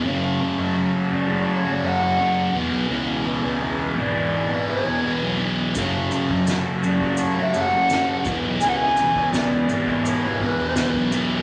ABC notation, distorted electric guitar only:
X:1
M:4/4
L:1/16
Q:1/4=84
K:Emix
V:1 name="Distorted electric guitar" clef=bass
[F,,C,F,]2 [F,,C,F,] [C,F,] [F,,C,F,]2 [F,,C,F,] [C,F,]2 [C,F,] [F,,C,F,] [C,F,] [F,,C,F,]2 [E,,B,,E,]2 | [E,,B,,E,]2 [E,,B,,E,] [B,,E,] [E,,B,,E,]2 [E,,B,,E,] [B,,E,]2 [B,,E,] [E,,B,,E,] [B,,E,] [E,,B,,E,]2 [E,,B,,E,]2 | [F,,C,F,]2 [F,,C,F,] [C,F,] [F,,C,F,]2 [F,,C,F,] [C,F,]2 [C,F,] [F,,C,F,] [C,F,] [F,,C,F,]2 [E,,B,,E,]2 | [E,,B,,E,]2 [E,,B,,E,] [B,,E,] [E,,B,,E,]2 [E,,B,,E,] [B,,E,]2 [B,,E,] [E,,B,,E,] [B,,E,] [E,,B,,E,]2 [E,,B,,E,]2 |]